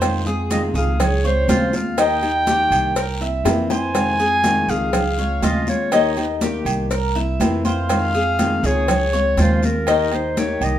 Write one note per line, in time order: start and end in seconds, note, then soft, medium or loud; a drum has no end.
0.00 0.69 F2 medium
0.00 0.25 C3 medium
0.00 0.25 D#3 medium
0.00 0.26 G#3 medium
0.00 0.26 C4 medium
0.00 0.25 F4 medium
0.00 0.25 C5 medium
0.00 cowbell loud
0.00 high conga soft
0.00 low agogo loud
0.00 long guiro medium
0.00 maracas medium
0.26 0.50 G#3 soft
0.26 0.50 C4 medium
0.26 0.50 F4 medium
0.26 0.74 G#4 medium
0.26 high conga soft
0.26 maracas soft
0.50 0.99 C3 medium
0.50 0.99 D#3 medium
0.50 0.99 G#3 medium
0.50 0.99 C4 medium
0.50 0.99 F4 medium
0.50 0.63 D#5 medium
0.50 cowbell medium
0.50 high conga loud
0.50 low agogo medium
0.50 short guiro medium
0.50 maracas medium
0.74 1.44 C#2 loud
0.74 1.23 G#4 medium
0.74 1.03 F5 loud
0.74 high conga soft
0.74 short guiro medium
0.74 maracas soft
1.00 1.25 C#5 loud
1.00 muted nylon-string guitar stroke medium
1.00 cowbell loud
1.00 high conga soft
1.00 low conga medium
1.00 low agogo loud
1.00 long guiro medium
1.00 maracas medium
1.24 1.48 G#3 soft
1.24 1.48 C4 soft
1.24 1.48 F4 medium
1.24 1.77 C5 loud
1.24 1.48 C#5 medium
1.24 high conga soft
1.24 maracas soft
1.48 2.65 D#2 medium
1.48 1.72 C#3 medium
1.48 1.73 F3 medium
1.48 1.73 G#3 medium
1.48 1.73 C4 medium
1.48 1.97 F4 medium
1.48 1.72 F4 medium
1.48 cowbell medium
1.48 high conga medium
1.48 low timbale medium
1.48 low agogo medium
1.48 short guiro medium
1.48 maracas medium
1.73 1.98 G#3 soft
1.73 1.97 C4 medium
1.73 1.97 F4 medium
1.73 2.01 F5 loud
1.73 high conga medium
1.73 short guiro medium
1.73 maracas soft
1.97 2.21 D#3 medium
1.97 2.22 A#3 medium
1.97 2.22 D#4 medium
1.97 2.46 D#4 medium
1.97 2.21 G4 medium
1.97 3.47 G5 loud
1.97 cowbell loud
1.97 high conga soft
1.97 low agogo loud
1.97 long guiro medium
1.97 maracas medium
2.22 2.46 A#3 soft
2.22 2.46 D#4 soft
2.22 2.46 G4 medium
2.22 high conga soft
2.22 low agogo medium
2.22 maracas soft
2.47 2.95 D#3 medium
2.47 2.95 A#3 medium
2.47 2.96 D#4 medium
2.47 2.95 G4 medium
2.47 2.96 G4 medium
2.47 cowbell medium
2.47 high conga loud
2.47 short guiro medium
2.47 maracas medium
2.71 3.41 C2 medium
2.71 low agogo loud
2.71 short guiro medium
2.71 maracas soft
2.96 3.21 A#4 medium
2.96 muted nylon-string guitar stroke medium
2.96 cowbell loud
2.96 high conga soft
2.96 long guiro medium
2.96 maracas medium
3.20 3.45 A#3 soft
3.20 3.45 C4 soft
3.20 3.44 E4 soft
3.20 3.69 E5 medium
3.20 high conga soft
3.20 maracas soft
3.44 4.62 F2 medium
3.44 3.69 C3 medium
3.44 3.69 E3 medium
3.44 3.70 A#3 medium
3.44 3.70 C4 medium
3.44 3.69 E4 medium
3.44 cowbell medium
3.44 high bongo loud
3.44 high conga medium
3.44 low timbale medium
3.44 low agogo loud
3.44 short guiro medium
3.44 maracas medium
3.70 3.94 A#3 soft
3.70 3.94 C4 soft
3.70 3.94 E4 medium
3.70 4.18 C5 medium
3.70 4.72 G#5 loud
3.70 low bongo medium
3.70 low agogo medium
3.70 short guiro medium
3.70 maracas soft
3.94 4.18 C3 medium
3.94 4.18 D#3 medium
3.94 4.18 G#3 medium
3.94 4.18 C4 medium
3.94 4.18 F4 medium
3.94 cowbell loud
3.94 high conga soft
3.94 low agogo loud
3.94 long guiro medium
3.94 maracas medium
4.19 4.43 G#3 soft
4.19 4.43 C4 soft
4.19 4.43 F4 medium
4.19 4.67 G#4 medium
4.19 high conga soft
4.19 maracas soft
4.43 4.92 C3 medium
4.43 4.92 D#3 medium
4.43 4.92 G#3 medium
4.43 4.92 C4 medium
4.43 4.92 F4 medium
4.43 cowbell medium
4.43 high conga loud
4.43 low agogo medium
4.43 short guiro medium
4.43 maracas medium
4.68 5.39 C#2 medium
4.68 5.17 G#4 medium
4.68 5.46 F5 loud
4.68 high conga soft
4.68 short guiro medium
4.68 maracas soft
4.93 muted nylon-string guitar stroke medium
4.93 cowbell loud
4.93 high conga soft
4.93 low conga medium
4.93 low agogo loud
4.93 long guiro medium
4.93 maracas medium
5.18 5.43 G#3 soft
5.18 5.42 C4 soft
5.18 5.42 F4 soft
5.18 5.42 C#5 medium
5.18 high conga soft
5.18 maracas soft
5.42 6.59 D#2 medium
5.42 5.67 C#3 medium
5.42 5.67 F3 medium
5.42 5.67 G#3 medium
5.42 5.67 C4 medium
5.42 5.91 F4 medium
5.42 5.66 F4 medium
5.42 5.68 D#5 medium
5.42 cowbell medium
5.42 high conga medium
5.42 low timbale medium
5.42 low agogo medium
5.42 short guiro medium
5.42 maracas medium
5.67 5.92 G#3 soft
5.67 5.92 C4 medium
5.67 5.91 F4 medium
5.67 6.39 C#5 medium
5.67 high conga medium
5.67 short guiro medium
5.67 maracas soft
5.92 6.16 D#3 medium
5.92 6.16 A#3 medium
5.92 6.40 D#4 medium
5.92 6.16 D#4 medium
5.92 6.16 G4 medium
5.92 cowbell loud
5.92 low agogo loud
5.92 long guiro medium
5.92 maracas medium
6.17 6.41 A#3 soft
6.17 6.41 D#4 soft
6.17 6.41 G4 medium
6.17 high conga soft
6.17 low agogo medium
6.17 maracas soft
6.41 6.90 D#3 medium
6.41 6.91 A#3 medium
6.41 6.91 D#4 medium
6.41 6.90 G4 medium
6.41 6.91 G4 medium
6.41 cowbell medium
6.41 high conga loud
6.41 short guiro medium
6.41 maracas medium
6.65 7.36 C2 loud
6.65 low agogo loud
6.65 short guiro medium
6.65 maracas soft
6.91 7.15 A#4 medium
6.91 muted nylon-string guitar stroke medium
6.91 cowbell loud
6.91 high conga soft
6.91 long guiro medium
6.91 maracas medium
7.15 7.40 A#3 soft
7.15 7.40 C4 soft
7.15 7.39 E4 medium
7.15 7.63 E5 medium
7.15 high conga soft
7.15 maracas soft
7.40 8.57 F2 loud
7.40 7.64 C3 medium
7.40 7.64 E3 medium
7.40 7.64 A#3 medium
7.40 7.65 C4 medium
7.40 7.64 E4 medium
7.40 cowbell medium
7.40 high conga medium
7.40 low timbale medium
7.40 low agogo loud
7.40 short guiro medium
7.40 maracas medium
7.65 7.90 A#3 soft
7.65 7.89 C4 soft
7.65 7.89 E4 medium
7.65 8.13 C5 medium
7.65 8.67 F5 loud
7.65 high conga medium
7.65 low agogo medium
7.65 short guiro medium
7.65 maracas soft
7.89 8.13 C3 medium
7.89 8.14 D#3 medium
7.89 8.14 G#3 medium
7.89 8.14 C4 medium
7.89 8.13 F4 medium
7.89 cowbell loud
7.89 high conga soft
7.89 low agogo loud
7.89 long guiro medium
7.89 maracas medium
8.14 8.39 G#3 soft
8.14 8.39 C4 soft
8.14 8.38 F4 soft
8.14 8.62 G#4 medium
8.14 high conga soft
8.14 maracas soft
8.39 8.88 C3 medium
8.39 8.88 D#3 medium
8.39 8.88 G#3 medium
8.39 8.88 C4 medium
8.39 8.88 F4 medium
8.39 cowbell medium
8.39 high conga loud
8.39 low agogo medium
8.39 short guiro medium
8.39 maracas medium
8.63 9.34 C#2 loud
8.63 9.12 G#4 medium
8.63 9.42 C#5 loud
8.63 high conga soft
8.63 short guiro medium
8.63 maracas soft
8.88 muted nylon-string guitar stroke medium
8.88 cowbell loud
8.88 high conga soft
8.88 low conga medium
8.88 low agogo loud
8.88 long guiro medium
8.88 maracas medium
9.13 9.38 G#3 soft
9.13 9.37 C4 soft
9.13 9.37 F4 medium
9.13 9.37 C#5 medium
9.13 high conga soft
9.13 maracas soft
9.37 10.55 D#2 loud
9.37 9.62 C#3 medium
9.37 9.62 F3 medium
9.37 9.62 G#3 medium
9.37 9.62 C4 medium
9.37 9.86 F4 medium
9.37 9.62 F4 medium
9.37 9.67 C5 medium
9.37 cowbell medium
9.37 high conga medium
9.37 low agogo medium
9.37 short guiro medium
9.37 maracas medium
9.63 9.87 G#3 soft
9.63 9.87 C4 medium
9.63 9.87 F4 medium
9.63 10.16 A#4 loud
9.63 high conga medium
9.63 short guiro medium
9.63 maracas soft
9.87 10.11 D#3 medium
9.87 10.12 A#3 medium
9.87 10.36 D#4 medium
9.87 10.12 D#4 medium
9.87 10.11 G4 medium
9.87 cowbell loud
9.87 high conga soft
9.87 low agogo loud
9.87 long guiro medium
9.87 maracas medium
10.12 10.36 A#3 soft
10.12 10.37 D#4 soft
10.12 10.36 G4 soft
10.12 10.40 C5 medium
10.12 high conga soft
10.12 low agogo medium
10.12 maracas soft
10.37 10.79 D#3 medium
10.37 10.79 A#3 medium
10.37 10.79 D#4 medium
10.37 10.79 G4 medium
10.37 10.66 C#5 loud
10.37 cowbell medium
10.37 high conga medium
10.37 short guiro medium
10.37 maracas medium
10.61 10.79 C2 medium
10.61 10.79 D#5 medium
10.61 high conga soft
10.61 low agogo loud
10.61 short guiro medium
10.61 maracas soft